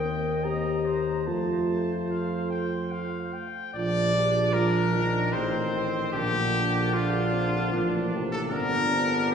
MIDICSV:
0, 0, Header, 1, 6, 480
1, 0, Start_track
1, 0, Key_signature, -2, "major"
1, 0, Tempo, 823045
1, 739, Time_signature, 3, 2, 24, 8
1, 2184, Tempo, 796813
1, 5558, End_track
2, 0, Start_track
2, 0, Title_t, "Trumpet"
2, 0, Program_c, 0, 56
2, 0, Note_on_c, 0, 79, 63
2, 260, Note_on_c, 0, 82, 49
2, 269, Note_off_c, 0, 79, 0
2, 740, Note_on_c, 0, 81, 59
2, 749, Note_off_c, 0, 82, 0
2, 1176, Note_off_c, 0, 81, 0
2, 1226, Note_on_c, 0, 77, 59
2, 1449, Note_off_c, 0, 77, 0
2, 1462, Note_on_c, 0, 79, 63
2, 1703, Note_on_c, 0, 77, 57
2, 1712, Note_off_c, 0, 79, 0
2, 1944, Note_on_c, 0, 79, 66
2, 1953, Note_off_c, 0, 77, 0
2, 2179, Note_off_c, 0, 79, 0
2, 2183, Note_on_c, 0, 74, 107
2, 2659, Note_on_c, 0, 70, 93
2, 2668, Note_off_c, 0, 74, 0
2, 3138, Note_on_c, 0, 72, 84
2, 3147, Note_off_c, 0, 70, 0
2, 3616, Note_off_c, 0, 72, 0
2, 3619, Note_on_c, 0, 67, 117
2, 4106, Note_on_c, 0, 65, 95
2, 4115, Note_off_c, 0, 67, 0
2, 4838, Note_off_c, 0, 65, 0
2, 4941, Note_on_c, 0, 69, 92
2, 4995, Note_off_c, 0, 69, 0
2, 5058, Note_on_c, 0, 70, 110
2, 5532, Note_off_c, 0, 70, 0
2, 5558, End_track
3, 0, Start_track
3, 0, Title_t, "French horn"
3, 0, Program_c, 1, 60
3, 0, Note_on_c, 1, 70, 73
3, 256, Note_off_c, 1, 70, 0
3, 260, Note_on_c, 1, 67, 82
3, 730, Note_off_c, 1, 67, 0
3, 743, Note_on_c, 1, 65, 80
3, 1687, Note_off_c, 1, 65, 0
3, 2667, Note_on_c, 1, 65, 71
3, 2888, Note_off_c, 1, 65, 0
3, 2903, Note_on_c, 1, 62, 67
3, 3137, Note_off_c, 1, 62, 0
3, 3142, Note_on_c, 1, 60, 76
3, 3613, Note_off_c, 1, 60, 0
3, 3622, Note_on_c, 1, 58, 75
3, 4097, Note_off_c, 1, 58, 0
3, 4111, Note_on_c, 1, 62, 74
3, 4347, Note_on_c, 1, 60, 73
3, 4357, Note_off_c, 1, 62, 0
3, 4587, Note_on_c, 1, 58, 85
3, 4597, Note_off_c, 1, 60, 0
3, 5062, Note_off_c, 1, 58, 0
3, 5065, Note_on_c, 1, 62, 77
3, 5308, Note_on_c, 1, 60, 79
3, 5317, Note_off_c, 1, 62, 0
3, 5558, Note_off_c, 1, 60, 0
3, 5558, End_track
4, 0, Start_track
4, 0, Title_t, "Trumpet"
4, 0, Program_c, 2, 56
4, 0, Note_on_c, 2, 75, 65
4, 259, Note_off_c, 2, 75, 0
4, 262, Note_on_c, 2, 75, 62
4, 501, Note_on_c, 2, 72, 55
4, 510, Note_off_c, 2, 75, 0
4, 742, Note_off_c, 2, 72, 0
4, 744, Note_on_c, 2, 72, 52
4, 1973, Note_off_c, 2, 72, 0
4, 2190, Note_on_c, 2, 62, 61
4, 2644, Note_off_c, 2, 62, 0
4, 2668, Note_on_c, 2, 62, 71
4, 3135, Note_off_c, 2, 62, 0
4, 3144, Note_on_c, 2, 60, 72
4, 3378, Note_off_c, 2, 60, 0
4, 3384, Note_on_c, 2, 60, 73
4, 3628, Note_on_c, 2, 62, 70
4, 3637, Note_off_c, 2, 60, 0
4, 4584, Note_off_c, 2, 62, 0
4, 4588, Note_on_c, 2, 62, 69
4, 5052, Note_off_c, 2, 62, 0
4, 5063, Note_on_c, 2, 62, 69
4, 5551, Note_off_c, 2, 62, 0
4, 5558, End_track
5, 0, Start_track
5, 0, Title_t, "Euphonium"
5, 0, Program_c, 3, 58
5, 25, Note_on_c, 3, 58, 58
5, 259, Note_on_c, 3, 60, 59
5, 268, Note_off_c, 3, 58, 0
5, 740, Note_off_c, 3, 60, 0
5, 743, Note_on_c, 3, 57, 61
5, 1924, Note_off_c, 3, 57, 0
5, 2184, Note_on_c, 3, 53, 70
5, 2409, Note_off_c, 3, 53, 0
5, 2427, Note_on_c, 3, 55, 75
5, 2669, Note_on_c, 3, 53, 67
5, 2678, Note_off_c, 3, 55, 0
5, 2907, Note_on_c, 3, 51, 77
5, 2916, Note_off_c, 3, 53, 0
5, 3625, Note_on_c, 3, 50, 74
5, 3634, Note_off_c, 3, 51, 0
5, 4583, Note_on_c, 3, 53, 73
5, 4592, Note_off_c, 3, 50, 0
5, 4821, Note_off_c, 3, 53, 0
5, 4824, Note_on_c, 3, 48, 81
5, 5060, Note_on_c, 3, 50, 83
5, 5069, Note_off_c, 3, 48, 0
5, 5551, Note_off_c, 3, 50, 0
5, 5558, End_track
6, 0, Start_track
6, 0, Title_t, "Bass trombone"
6, 0, Program_c, 4, 57
6, 0, Note_on_c, 4, 39, 70
6, 743, Note_on_c, 4, 41, 64
6, 752, Note_off_c, 4, 39, 0
6, 1996, Note_off_c, 4, 41, 0
6, 2185, Note_on_c, 4, 34, 77
6, 3144, Note_on_c, 4, 33, 71
6, 3153, Note_off_c, 4, 34, 0
6, 3622, Note_off_c, 4, 33, 0
6, 3626, Note_on_c, 4, 34, 76
6, 4567, Note_off_c, 4, 34, 0
6, 4585, Note_on_c, 4, 33, 72
6, 5059, Note_on_c, 4, 31, 93
6, 5068, Note_off_c, 4, 33, 0
6, 5558, Note_off_c, 4, 31, 0
6, 5558, End_track
0, 0, End_of_file